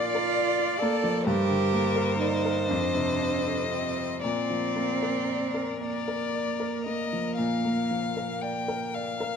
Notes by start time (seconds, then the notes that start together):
Already playing: A#2 F3 A#3 F4 A#4 D5
0.15 A#4
0.37 D5
0.59 F4
0.80 A#3 A4
1.04 F3
1.25 G2 G4 A#4 C5
1.49 D3
1.73 A#3
1.96 A#4
2.19 D#4 D5
2.45 A#4
2.68 F2 D4 D#5
2.95 C3
3.20 C4
3.46 A4
3.69 C4 D#5
3.98 C5
4.21 A#2 C4 A#4 D5
4.50 F3
4.76 A#3
5.02 A#4
5.29 D5
5.54 A#4
5.79 A#3 D5
6.08 A#4
6.35 D5
6.60 A#4
6.85 A#3 D#5
7.13 F3
7.37 A#2 F5
7.65 A#3
7.91 F3
8.17 A#4
8.42 D5 G5
8.68 A#4
8.94 D5 F5
9.20 A#4